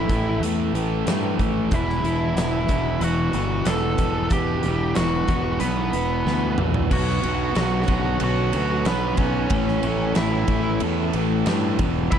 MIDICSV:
0, 0, Header, 1, 6, 480
1, 0, Start_track
1, 0, Tempo, 650054
1, 1266, Time_signature, 4, 2, 24, 8
1, 8999, End_track
2, 0, Start_track
2, 0, Title_t, "Lead electric guitar"
2, 0, Program_c, 0, 29
2, 0, Note_on_c, 0, 64, 67
2, 0, Note_on_c, 0, 76, 87
2, 271, Note_off_c, 0, 76, 0
2, 283, Note_off_c, 0, 64, 0
2, 1288, Note_on_c, 0, 64, 72
2, 1296, Note_on_c, 0, 76, 93
2, 2206, Note_off_c, 0, 64, 0
2, 2243, Note_on_c, 0, 78, 101
2, 2247, Note_on_c, 0, 66, 73
2, 2268, Note_off_c, 0, 76, 0
2, 2686, Note_off_c, 0, 66, 0
2, 2708, Note_on_c, 0, 81, 93
2, 2713, Note_on_c, 0, 69, 79
2, 2727, Note_off_c, 0, 78, 0
2, 3158, Note_off_c, 0, 69, 0
2, 3194, Note_on_c, 0, 67, 83
2, 3195, Note_on_c, 0, 79, 88
2, 3200, Note_off_c, 0, 81, 0
2, 3640, Note_off_c, 0, 67, 0
2, 3662, Note_off_c, 0, 79, 0
2, 3663, Note_on_c, 0, 66, 70
2, 3665, Note_on_c, 0, 78, 77
2, 4114, Note_off_c, 0, 66, 0
2, 4136, Note_on_c, 0, 71, 70
2, 4137, Note_off_c, 0, 78, 0
2, 4140, Note_on_c, 0, 59, 57
2, 4831, Note_off_c, 0, 71, 0
2, 4832, Note_off_c, 0, 59, 0
2, 5108, Note_on_c, 0, 78, 103
2, 5115, Note_on_c, 0, 66, 80
2, 6041, Note_off_c, 0, 66, 0
2, 6071, Note_off_c, 0, 78, 0
2, 6076, Note_on_c, 0, 66, 85
2, 6082, Note_on_c, 0, 78, 90
2, 6522, Note_off_c, 0, 66, 0
2, 6548, Note_on_c, 0, 71, 85
2, 6550, Note_off_c, 0, 78, 0
2, 6553, Note_on_c, 0, 59, 65
2, 6772, Note_off_c, 0, 59, 0
2, 6775, Note_on_c, 0, 61, 69
2, 6776, Note_off_c, 0, 71, 0
2, 6779, Note_on_c, 0, 73, 89
2, 7473, Note_off_c, 0, 61, 0
2, 7474, Note_off_c, 0, 73, 0
2, 7507, Note_on_c, 0, 64, 66
2, 7510, Note_on_c, 0, 76, 81
2, 7959, Note_off_c, 0, 64, 0
2, 7960, Note_off_c, 0, 76, 0
2, 8944, Note_on_c, 0, 76, 93
2, 8953, Note_on_c, 0, 64, 77
2, 8999, Note_off_c, 0, 64, 0
2, 8999, Note_off_c, 0, 76, 0
2, 8999, End_track
3, 0, Start_track
3, 0, Title_t, "String section"
3, 0, Program_c, 1, 48
3, 5105, Note_on_c, 1, 50, 71
3, 5105, Note_on_c, 1, 59, 68
3, 5106, Note_on_c, 1, 61, 84
3, 7008, Note_off_c, 1, 50, 0
3, 7027, Note_on_c, 1, 57, 73
3, 8682, Note_off_c, 1, 59, 0
3, 8682, Note_off_c, 1, 61, 0
3, 8694, Note_off_c, 1, 57, 0
3, 8715, Note_on_c, 1, 64, 69
3, 8718, Note_on_c, 1, 55, 72
3, 8999, Note_off_c, 1, 55, 0
3, 8999, Note_off_c, 1, 64, 0
3, 8999, End_track
4, 0, Start_track
4, 0, Title_t, "Overdriven electric guitar"
4, 0, Program_c, 2, 29
4, 67, Note_on_c, 2, 45, 89
4, 69, Note_on_c, 2, 52, 87
4, 79, Note_on_c, 2, 57, 91
4, 310, Note_off_c, 2, 45, 0
4, 317, Note_off_c, 2, 57, 0
4, 319, Note_on_c, 2, 45, 89
4, 321, Note_off_c, 2, 52, 0
4, 324, Note_on_c, 2, 52, 99
4, 326, Note_on_c, 2, 57, 105
4, 536, Note_off_c, 2, 45, 0
4, 545, Note_on_c, 2, 45, 92
4, 548, Note_off_c, 2, 52, 0
4, 548, Note_off_c, 2, 57, 0
4, 551, Note_on_c, 2, 52, 91
4, 557, Note_on_c, 2, 57, 89
4, 769, Note_off_c, 2, 45, 0
4, 778, Note_off_c, 2, 52, 0
4, 778, Note_off_c, 2, 57, 0
4, 778, Note_on_c, 2, 45, 81
4, 781, Note_on_c, 2, 52, 85
4, 787, Note_on_c, 2, 57, 91
4, 1017, Note_off_c, 2, 45, 0
4, 1026, Note_on_c, 2, 45, 86
4, 1028, Note_off_c, 2, 52, 0
4, 1028, Note_off_c, 2, 57, 0
4, 1031, Note_on_c, 2, 52, 81
4, 1037, Note_on_c, 2, 57, 96
4, 1251, Note_off_c, 2, 45, 0
4, 1257, Note_off_c, 2, 57, 0
4, 1267, Note_on_c, 2, 40, 83
4, 1270, Note_on_c, 2, 47, 91
4, 1273, Note_off_c, 2, 52, 0
4, 1276, Note_on_c, 2, 52, 98
4, 1499, Note_off_c, 2, 40, 0
4, 1499, Note_off_c, 2, 47, 0
4, 1502, Note_on_c, 2, 40, 79
4, 1507, Note_on_c, 2, 47, 80
4, 1512, Note_off_c, 2, 52, 0
4, 1515, Note_on_c, 2, 52, 92
4, 1752, Note_off_c, 2, 40, 0
4, 1752, Note_off_c, 2, 47, 0
4, 1755, Note_on_c, 2, 40, 75
4, 1760, Note_off_c, 2, 52, 0
4, 1761, Note_on_c, 2, 47, 86
4, 1763, Note_on_c, 2, 52, 91
4, 1989, Note_off_c, 2, 47, 0
4, 1994, Note_off_c, 2, 40, 0
4, 1997, Note_on_c, 2, 40, 84
4, 1998, Note_on_c, 2, 47, 92
4, 2000, Note_off_c, 2, 52, 0
4, 2003, Note_on_c, 2, 52, 99
4, 2218, Note_off_c, 2, 40, 0
4, 2227, Note_on_c, 2, 40, 92
4, 2229, Note_off_c, 2, 47, 0
4, 2231, Note_off_c, 2, 52, 0
4, 2238, Note_on_c, 2, 47, 105
4, 2240, Note_on_c, 2, 52, 98
4, 2463, Note_off_c, 2, 40, 0
4, 2470, Note_off_c, 2, 47, 0
4, 2472, Note_on_c, 2, 40, 88
4, 2473, Note_off_c, 2, 52, 0
4, 2478, Note_on_c, 2, 47, 92
4, 2482, Note_on_c, 2, 52, 106
4, 2708, Note_off_c, 2, 40, 0
4, 2715, Note_off_c, 2, 47, 0
4, 2717, Note_on_c, 2, 40, 79
4, 2719, Note_off_c, 2, 52, 0
4, 2724, Note_on_c, 2, 47, 99
4, 2728, Note_on_c, 2, 52, 97
4, 2945, Note_off_c, 2, 40, 0
4, 2951, Note_off_c, 2, 47, 0
4, 2954, Note_on_c, 2, 40, 86
4, 2955, Note_off_c, 2, 52, 0
4, 2960, Note_on_c, 2, 47, 82
4, 2964, Note_on_c, 2, 52, 98
4, 3188, Note_off_c, 2, 40, 0
4, 3194, Note_off_c, 2, 47, 0
4, 3196, Note_off_c, 2, 52, 0
4, 3197, Note_on_c, 2, 40, 85
4, 3203, Note_on_c, 2, 47, 101
4, 3205, Note_on_c, 2, 52, 94
4, 3422, Note_off_c, 2, 40, 0
4, 3431, Note_on_c, 2, 40, 85
4, 3432, Note_off_c, 2, 47, 0
4, 3437, Note_off_c, 2, 52, 0
4, 3441, Note_on_c, 2, 47, 81
4, 3446, Note_on_c, 2, 52, 99
4, 3661, Note_off_c, 2, 40, 0
4, 3668, Note_off_c, 2, 47, 0
4, 3670, Note_on_c, 2, 40, 83
4, 3676, Note_on_c, 2, 47, 80
4, 3677, Note_off_c, 2, 52, 0
4, 3686, Note_on_c, 2, 52, 88
4, 3895, Note_off_c, 2, 40, 0
4, 3896, Note_off_c, 2, 47, 0
4, 3901, Note_off_c, 2, 52, 0
4, 3904, Note_on_c, 2, 40, 90
4, 3905, Note_on_c, 2, 47, 89
4, 3910, Note_on_c, 2, 52, 90
4, 4135, Note_off_c, 2, 40, 0
4, 4141, Note_off_c, 2, 47, 0
4, 4144, Note_off_c, 2, 52, 0
4, 4144, Note_on_c, 2, 40, 86
4, 4149, Note_on_c, 2, 47, 115
4, 4153, Note_on_c, 2, 52, 114
4, 4375, Note_off_c, 2, 40, 0
4, 4382, Note_off_c, 2, 47, 0
4, 4384, Note_on_c, 2, 40, 85
4, 4385, Note_off_c, 2, 52, 0
4, 4390, Note_on_c, 2, 47, 91
4, 4394, Note_on_c, 2, 52, 97
4, 4615, Note_off_c, 2, 40, 0
4, 4616, Note_off_c, 2, 47, 0
4, 4622, Note_off_c, 2, 52, 0
4, 4623, Note_on_c, 2, 40, 77
4, 4625, Note_on_c, 2, 47, 84
4, 4631, Note_on_c, 2, 52, 92
4, 4857, Note_off_c, 2, 40, 0
4, 4865, Note_off_c, 2, 47, 0
4, 4866, Note_on_c, 2, 40, 85
4, 4870, Note_off_c, 2, 52, 0
4, 4874, Note_on_c, 2, 47, 84
4, 4879, Note_on_c, 2, 52, 95
4, 5090, Note_off_c, 2, 47, 0
4, 5091, Note_off_c, 2, 40, 0
4, 5097, Note_off_c, 2, 52, 0
4, 5099, Note_on_c, 2, 47, 99
4, 5099, Note_on_c, 2, 54, 99
4, 5110, Note_on_c, 2, 59, 88
4, 5337, Note_off_c, 2, 47, 0
4, 5344, Note_off_c, 2, 54, 0
4, 5346, Note_on_c, 2, 47, 81
4, 5352, Note_off_c, 2, 59, 0
4, 5353, Note_on_c, 2, 54, 88
4, 5355, Note_on_c, 2, 59, 91
4, 5575, Note_off_c, 2, 47, 0
4, 5578, Note_off_c, 2, 54, 0
4, 5584, Note_on_c, 2, 47, 78
4, 5587, Note_on_c, 2, 54, 77
4, 5592, Note_off_c, 2, 59, 0
4, 5595, Note_on_c, 2, 59, 86
4, 5809, Note_off_c, 2, 47, 0
4, 5815, Note_off_c, 2, 54, 0
4, 5818, Note_on_c, 2, 47, 85
4, 5824, Note_on_c, 2, 54, 91
4, 5829, Note_off_c, 2, 59, 0
4, 5832, Note_on_c, 2, 59, 88
4, 6057, Note_off_c, 2, 47, 0
4, 6064, Note_off_c, 2, 54, 0
4, 6066, Note_on_c, 2, 47, 107
4, 6073, Note_off_c, 2, 59, 0
4, 6073, Note_on_c, 2, 54, 100
4, 6076, Note_on_c, 2, 59, 111
4, 6294, Note_off_c, 2, 47, 0
4, 6303, Note_off_c, 2, 54, 0
4, 6303, Note_on_c, 2, 47, 96
4, 6310, Note_off_c, 2, 59, 0
4, 6311, Note_on_c, 2, 54, 87
4, 6313, Note_on_c, 2, 59, 100
4, 6534, Note_off_c, 2, 47, 0
4, 6537, Note_off_c, 2, 54, 0
4, 6543, Note_on_c, 2, 47, 90
4, 6545, Note_on_c, 2, 54, 86
4, 6548, Note_off_c, 2, 59, 0
4, 6551, Note_on_c, 2, 59, 99
4, 6776, Note_off_c, 2, 47, 0
4, 6783, Note_off_c, 2, 54, 0
4, 6785, Note_on_c, 2, 47, 82
4, 6792, Note_on_c, 2, 54, 81
4, 6795, Note_off_c, 2, 59, 0
4, 6798, Note_on_c, 2, 59, 92
4, 7010, Note_off_c, 2, 47, 0
4, 7013, Note_on_c, 2, 45, 86
4, 7015, Note_off_c, 2, 54, 0
4, 7020, Note_on_c, 2, 52, 90
4, 7024, Note_off_c, 2, 59, 0
4, 7027, Note_on_c, 2, 57, 101
4, 7245, Note_off_c, 2, 45, 0
4, 7254, Note_on_c, 2, 45, 80
4, 7257, Note_off_c, 2, 57, 0
4, 7260, Note_off_c, 2, 52, 0
4, 7263, Note_on_c, 2, 52, 92
4, 7265, Note_on_c, 2, 57, 94
4, 7487, Note_off_c, 2, 45, 0
4, 7495, Note_off_c, 2, 52, 0
4, 7496, Note_off_c, 2, 57, 0
4, 7496, Note_on_c, 2, 45, 81
4, 7498, Note_on_c, 2, 52, 91
4, 7505, Note_on_c, 2, 57, 102
4, 7726, Note_off_c, 2, 45, 0
4, 7734, Note_off_c, 2, 57, 0
4, 7735, Note_on_c, 2, 45, 85
4, 7737, Note_off_c, 2, 52, 0
4, 7740, Note_on_c, 2, 52, 96
4, 7743, Note_on_c, 2, 57, 95
4, 7975, Note_off_c, 2, 45, 0
4, 7980, Note_off_c, 2, 52, 0
4, 7980, Note_off_c, 2, 57, 0
4, 7983, Note_on_c, 2, 52, 110
4, 7984, Note_on_c, 2, 45, 92
4, 7989, Note_on_c, 2, 57, 107
4, 8214, Note_off_c, 2, 45, 0
4, 8222, Note_off_c, 2, 57, 0
4, 8223, Note_on_c, 2, 45, 96
4, 8225, Note_off_c, 2, 52, 0
4, 8228, Note_on_c, 2, 52, 99
4, 8231, Note_on_c, 2, 57, 93
4, 8455, Note_off_c, 2, 45, 0
4, 8463, Note_on_c, 2, 45, 78
4, 8464, Note_off_c, 2, 57, 0
4, 8470, Note_off_c, 2, 52, 0
4, 8472, Note_on_c, 2, 57, 100
4, 8473, Note_on_c, 2, 52, 90
4, 8693, Note_off_c, 2, 45, 0
4, 8698, Note_off_c, 2, 57, 0
4, 8707, Note_on_c, 2, 40, 95
4, 8715, Note_on_c, 2, 47, 108
4, 8716, Note_off_c, 2, 52, 0
4, 8719, Note_on_c, 2, 52, 98
4, 8947, Note_off_c, 2, 40, 0
4, 8950, Note_off_c, 2, 47, 0
4, 8950, Note_on_c, 2, 40, 85
4, 8959, Note_off_c, 2, 52, 0
4, 8959, Note_on_c, 2, 47, 91
4, 8962, Note_on_c, 2, 52, 94
4, 8999, Note_off_c, 2, 40, 0
4, 8999, Note_off_c, 2, 47, 0
4, 8999, Note_off_c, 2, 52, 0
4, 8999, End_track
5, 0, Start_track
5, 0, Title_t, "Fingered electric bass"
5, 0, Program_c, 3, 33
5, 69, Note_on_c, 3, 33, 86
5, 281, Note_off_c, 3, 33, 0
5, 297, Note_on_c, 3, 40, 97
5, 515, Note_off_c, 3, 40, 0
5, 543, Note_on_c, 3, 33, 88
5, 758, Note_off_c, 3, 33, 0
5, 787, Note_on_c, 3, 43, 91
5, 1000, Note_off_c, 3, 43, 0
5, 1031, Note_on_c, 3, 33, 88
5, 1242, Note_off_c, 3, 33, 0
5, 1267, Note_on_c, 3, 28, 96
5, 1479, Note_off_c, 3, 28, 0
5, 1504, Note_on_c, 3, 28, 102
5, 1718, Note_off_c, 3, 28, 0
5, 1741, Note_on_c, 3, 28, 93
5, 1956, Note_off_c, 3, 28, 0
5, 1989, Note_on_c, 3, 28, 78
5, 2200, Note_off_c, 3, 28, 0
5, 2223, Note_on_c, 3, 28, 104
5, 2437, Note_off_c, 3, 28, 0
5, 2462, Note_on_c, 3, 31, 92
5, 2676, Note_off_c, 3, 31, 0
5, 2704, Note_on_c, 3, 28, 96
5, 2917, Note_off_c, 3, 28, 0
5, 2944, Note_on_c, 3, 28, 86
5, 3157, Note_off_c, 3, 28, 0
5, 3183, Note_on_c, 3, 28, 89
5, 3397, Note_off_c, 3, 28, 0
5, 3426, Note_on_c, 3, 28, 93
5, 3638, Note_off_c, 3, 28, 0
5, 3669, Note_on_c, 3, 28, 84
5, 3880, Note_off_c, 3, 28, 0
5, 3903, Note_on_c, 3, 28, 83
5, 4117, Note_off_c, 3, 28, 0
5, 4143, Note_on_c, 3, 35, 96
5, 4357, Note_off_c, 3, 35, 0
5, 4384, Note_on_c, 3, 28, 87
5, 4597, Note_off_c, 3, 28, 0
5, 4621, Note_on_c, 3, 38, 93
5, 4836, Note_off_c, 3, 38, 0
5, 4864, Note_on_c, 3, 34, 88
5, 5077, Note_off_c, 3, 34, 0
5, 5102, Note_on_c, 3, 35, 96
5, 5316, Note_off_c, 3, 35, 0
5, 5345, Note_on_c, 3, 35, 91
5, 5558, Note_off_c, 3, 35, 0
5, 5583, Note_on_c, 3, 35, 93
5, 5797, Note_off_c, 3, 35, 0
5, 5822, Note_on_c, 3, 35, 88
5, 6037, Note_off_c, 3, 35, 0
5, 6062, Note_on_c, 3, 35, 101
5, 6277, Note_off_c, 3, 35, 0
5, 6305, Note_on_c, 3, 38, 87
5, 6519, Note_off_c, 3, 38, 0
5, 6542, Note_on_c, 3, 35, 96
5, 6757, Note_off_c, 3, 35, 0
5, 6780, Note_on_c, 3, 35, 94
5, 6996, Note_off_c, 3, 35, 0
5, 7020, Note_on_c, 3, 33, 94
5, 7237, Note_off_c, 3, 33, 0
5, 7261, Note_on_c, 3, 33, 98
5, 7477, Note_off_c, 3, 33, 0
5, 7506, Note_on_c, 3, 33, 89
5, 7721, Note_off_c, 3, 33, 0
5, 7739, Note_on_c, 3, 33, 91
5, 7957, Note_off_c, 3, 33, 0
5, 7983, Note_on_c, 3, 40, 101
5, 8199, Note_off_c, 3, 40, 0
5, 8225, Note_on_c, 3, 33, 88
5, 8441, Note_off_c, 3, 33, 0
5, 8467, Note_on_c, 3, 43, 100
5, 8708, Note_on_c, 3, 28, 95
5, 8719, Note_off_c, 3, 43, 0
5, 8923, Note_off_c, 3, 28, 0
5, 8952, Note_on_c, 3, 28, 105
5, 8999, Note_off_c, 3, 28, 0
5, 8999, End_track
6, 0, Start_track
6, 0, Title_t, "Drums"
6, 69, Note_on_c, 9, 42, 74
6, 70, Note_on_c, 9, 36, 92
6, 143, Note_off_c, 9, 42, 0
6, 144, Note_off_c, 9, 36, 0
6, 317, Note_on_c, 9, 42, 99
6, 391, Note_off_c, 9, 42, 0
6, 555, Note_on_c, 9, 42, 74
6, 629, Note_off_c, 9, 42, 0
6, 789, Note_on_c, 9, 42, 103
6, 797, Note_on_c, 9, 38, 113
6, 862, Note_off_c, 9, 42, 0
6, 871, Note_off_c, 9, 38, 0
6, 1029, Note_on_c, 9, 36, 83
6, 1029, Note_on_c, 9, 42, 76
6, 1103, Note_off_c, 9, 36, 0
6, 1103, Note_off_c, 9, 42, 0
6, 1264, Note_on_c, 9, 42, 109
6, 1269, Note_on_c, 9, 36, 104
6, 1338, Note_off_c, 9, 42, 0
6, 1343, Note_off_c, 9, 36, 0
6, 1398, Note_on_c, 9, 38, 34
6, 1472, Note_off_c, 9, 38, 0
6, 1511, Note_on_c, 9, 42, 73
6, 1585, Note_off_c, 9, 42, 0
6, 1749, Note_on_c, 9, 42, 108
6, 1758, Note_on_c, 9, 38, 114
6, 1823, Note_off_c, 9, 42, 0
6, 1832, Note_off_c, 9, 38, 0
6, 1983, Note_on_c, 9, 42, 74
6, 1987, Note_on_c, 9, 36, 84
6, 2057, Note_off_c, 9, 42, 0
6, 2061, Note_off_c, 9, 36, 0
6, 2224, Note_on_c, 9, 42, 98
6, 2298, Note_off_c, 9, 42, 0
6, 2460, Note_on_c, 9, 42, 70
6, 2534, Note_off_c, 9, 42, 0
6, 2698, Note_on_c, 9, 42, 100
6, 2707, Note_on_c, 9, 38, 112
6, 2772, Note_off_c, 9, 42, 0
6, 2781, Note_off_c, 9, 38, 0
6, 2939, Note_on_c, 9, 42, 69
6, 2944, Note_on_c, 9, 36, 84
6, 3013, Note_off_c, 9, 42, 0
6, 3018, Note_off_c, 9, 36, 0
6, 3177, Note_on_c, 9, 42, 93
6, 3182, Note_on_c, 9, 36, 105
6, 3251, Note_off_c, 9, 42, 0
6, 3256, Note_off_c, 9, 36, 0
6, 3418, Note_on_c, 9, 42, 69
6, 3492, Note_off_c, 9, 42, 0
6, 3657, Note_on_c, 9, 42, 96
6, 3665, Note_on_c, 9, 38, 115
6, 3730, Note_off_c, 9, 42, 0
6, 3739, Note_off_c, 9, 38, 0
6, 3898, Note_on_c, 9, 42, 74
6, 3903, Note_on_c, 9, 36, 86
6, 3972, Note_off_c, 9, 42, 0
6, 3977, Note_off_c, 9, 36, 0
6, 4134, Note_on_c, 9, 42, 99
6, 4207, Note_off_c, 9, 42, 0
6, 4380, Note_on_c, 9, 42, 69
6, 4454, Note_off_c, 9, 42, 0
6, 4629, Note_on_c, 9, 38, 62
6, 4702, Note_off_c, 9, 38, 0
6, 4857, Note_on_c, 9, 45, 88
6, 4931, Note_off_c, 9, 45, 0
6, 4979, Note_on_c, 9, 43, 90
6, 5053, Note_off_c, 9, 43, 0
6, 5104, Note_on_c, 9, 36, 113
6, 5105, Note_on_c, 9, 49, 125
6, 5178, Note_off_c, 9, 36, 0
6, 5179, Note_off_c, 9, 49, 0
6, 5234, Note_on_c, 9, 38, 34
6, 5308, Note_off_c, 9, 38, 0
6, 5342, Note_on_c, 9, 51, 81
6, 5416, Note_off_c, 9, 51, 0
6, 5577, Note_on_c, 9, 51, 100
6, 5586, Note_on_c, 9, 38, 109
6, 5651, Note_off_c, 9, 51, 0
6, 5660, Note_off_c, 9, 38, 0
6, 5817, Note_on_c, 9, 51, 80
6, 5821, Note_on_c, 9, 36, 91
6, 5890, Note_off_c, 9, 51, 0
6, 5895, Note_off_c, 9, 36, 0
6, 6054, Note_on_c, 9, 51, 104
6, 6128, Note_off_c, 9, 51, 0
6, 6298, Note_on_c, 9, 51, 76
6, 6372, Note_off_c, 9, 51, 0
6, 6536, Note_on_c, 9, 51, 91
6, 6544, Note_on_c, 9, 38, 120
6, 6609, Note_off_c, 9, 51, 0
6, 6618, Note_off_c, 9, 38, 0
6, 6772, Note_on_c, 9, 51, 71
6, 6778, Note_on_c, 9, 36, 83
6, 6846, Note_off_c, 9, 51, 0
6, 6852, Note_off_c, 9, 36, 0
6, 7013, Note_on_c, 9, 51, 104
6, 7019, Note_on_c, 9, 36, 115
6, 7087, Note_off_c, 9, 51, 0
6, 7093, Note_off_c, 9, 36, 0
6, 7148, Note_on_c, 9, 38, 33
6, 7222, Note_off_c, 9, 38, 0
6, 7257, Note_on_c, 9, 51, 75
6, 7331, Note_off_c, 9, 51, 0
6, 7495, Note_on_c, 9, 51, 106
6, 7503, Note_on_c, 9, 38, 110
6, 7568, Note_off_c, 9, 51, 0
6, 7577, Note_off_c, 9, 38, 0
6, 7736, Note_on_c, 9, 51, 74
6, 7740, Note_on_c, 9, 36, 90
6, 7810, Note_off_c, 9, 51, 0
6, 7814, Note_off_c, 9, 36, 0
6, 7976, Note_on_c, 9, 51, 105
6, 8050, Note_off_c, 9, 51, 0
6, 8221, Note_on_c, 9, 51, 81
6, 8295, Note_off_c, 9, 51, 0
6, 8461, Note_on_c, 9, 51, 105
6, 8469, Note_on_c, 9, 38, 107
6, 8534, Note_off_c, 9, 51, 0
6, 8543, Note_off_c, 9, 38, 0
6, 8704, Note_on_c, 9, 51, 80
6, 8708, Note_on_c, 9, 36, 91
6, 8778, Note_off_c, 9, 51, 0
6, 8782, Note_off_c, 9, 36, 0
6, 8946, Note_on_c, 9, 51, 109
6, 8950, Note_on_c, 9, 36, 112
6, 8999, Note_off_c, 9, 36, 0
6, 8999, Note_off_c, 9, 51, 0
6, 8999, End_track
0, 0, End_of_file